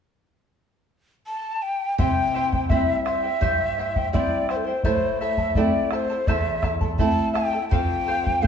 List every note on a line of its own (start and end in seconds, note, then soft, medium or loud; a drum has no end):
1.26 1.64 A5 medium
1.62 1.98 G5 medium
1.98 2.68 C3 medium
1.98 2.34 E4 medium
1.98 2.35 G4 medium
1.98 2.34 C5 medium
1.98 2.33 E5 medium
1.98 2.71 G5 loud
1.98 2.35 G5 medium
1.98 bombo low medium
2.34 2.53 E4 medium
2.34 2.52 C5 medium
2.34 2.53 E5 medium
2.34 2.51 G5 medium
2.52 2.69 E4 soft
2.52 2.69 C5 soft
2.52 2.70 G5 soft
2.52 bombo low soft
2.70 3.28 G3 soft
2.70 3.28 C4 soft
2.70 3.04 E4 medium
2.70 3.28 E4 soft
2.70 3.04 C5 medium
2.70 3.05 E5 medium
2.70 3.04 E5 medium
2.70 3.05 G5 medium
2.70 bombo low medium
3.05 3.24 E4 medium
3.05 3.23 C5 medium
3.05 4.09 E5 medium
3.05 3.24 E5 medium
3.05 3.22 G5 medium
3.05 bombo rim soft
3.24 3.41 E4 soft
3.24 3.41 C5 soft
3.24 3.41 G5 soft
3.41 4.11 G2 medium
3.41 3.78 E4 medium
3.41 3.78 G4 medium
3.41 3.78 C5 medium
3.41 3.77 E5 medium
3.41 3.78 G5 medium
3.41 bombo low medium
3.78 3.96 E4 medium
3.78 3.96 C5 medium
3.78 3.96 E5 medium
3.78 3.95 G5 medium
3.96 4.14 E4 soft
3.96 4.14 C5 soft
3.96 4.14 G5 soft
3.96 bombo low soft
4.13 4.71 G3 soft
4.13 4.71 C4 soft
4.13 4.71 E4 soft
4.13 4.48 E4 soft
4.13 4.49 C5 medium
4.13 4.47 D5 medium
4.13 4.48 E5 soft
4.13 4.49 G5 medium
4.13 bombo low medium
4.49 4.67 E4 medium
4.49 4.66 C5 medium
4.49 4.58 C5 medium
4.49 4.67 E5 medium
4.49 4.65 G5 medium
4.49 bombo rim soft
4.57 4.66 A4 medium
4.65 4.84 E4 soft
4.65 4.84 C5 medium
4.65 4.83 C5 soft
4.65 4.85 G5 soft
4.84 5.55 A2 medium
4.84 5.20 E4 medium
4.84 5.20 A4 medium
4.84 5.21 C5 medium
4.84 5.19 C5 medium
4.84 5.19 E5 medium
4.84 5.21 A5 medium
4.84 bombo low medium
5.21 5.38 E4 medium
5.21 5.38 A4 medium
5.21 5.38 E5 medium
5.21 5.58 E5 medium
5.21 5.37 A5 medium
5.37 5.55 E4 soft
5.37 5.56 A4 soft
5.37 5.55 A5 soft
5.37 bombo low soft
5.55 6.14 A3 soft
5.55 6.15 C4 soft
5.55 5.90 E4 medium
5.55 6.15 E4 soft
5.55 5.91 A4 medium
5.55 5.92 D5 medium
5.55 5.90 E5 medium
5.55 5.92 A5 medium
5.55 bombo low medium
5.91 6.10 E4 medium
5.91 6.10 A4 medium
5.91 6.29 C5 medium
5.91 6.09 E5 soft
5.91 6.08 A5 medium
5.91 bombo rim soft
6.10 6.28 E4 soft
6.10 6.28 A4 soft
6.10 6.28 A5 soft
6.27 6.98 E2 medium
6.27 6.62 E4 medium
6.27 6.62 A4 medium
6.27 6.64 C5 medium
6.27 6.73 E5 medium
6.27 6.61 E5 medium
6.27 6.63 A5 medium
6.27 bombo low medium
6.62 6.81 E4 medium
6.62 6.81 A4 medium
6.62 6.80 E5 medium
6.62 6.80 A5 medium
6.62 bombo rim soft
6.62 bombo low soft
6.81 6.98 E4 soft
6.81 6.99 A4 soft
6.81 6.98 A5 soft
6.81 bombo low soft
6.99 7.57 A3 soft
6.99 7.57 C4 soft
6.99 7.34 E4 medium
6.99 7.57 E4 soft
6.99 7.34 A4 medium
6.99 7.33 E5 soft
6.99 7.33 A5 medium
6.99 7.34 A5 medium
6.99 bombo low medium
7.34 7.53 E4 medium
7.34 7.53 A4 medium
7.34 7.52 E5 medium
7.34 7.68 G5 medium
7.34 7.52 A5 medium
7.34 bombo rim soft
7.53 7.71 E4 soft
7.53 7.70 A4 soft
7.53 7.71 A5 soft
7.69 8.41 F2 medium
7.69 8.05 A4 medium
7.69 8.07 C5 medium
7.69 8.08 F5 medium
7.69 8.43 G5 loud
7.69 bombo low medium
8.07 8.25 A4 medium
8.07 8.24 C5 medium
8.07 8.23 F5 medium
8.24 8.43 C5 soft
8.24 8.42 F5 soft
8.24 bombo low soft
8.42 8.47 A3 soft
8.42 8.47 C4 soft
8.42 8.47 F4 soft
8.42 8.47 A4 medium
8.42 8.47 C5 medium
8.42 8.47 F5 medium